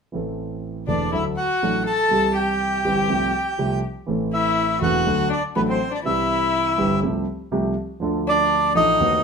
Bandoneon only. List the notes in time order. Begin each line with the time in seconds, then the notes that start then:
0.88 D5
1.14 E5
1.37 F#5
1.87 A5
2.35 G5
4.34 E5
4.83 F#5
5.32 D5
5.56 B4
5.70 C5
5.95 D5
6.06 E5
8.29 D5
8.76 D#5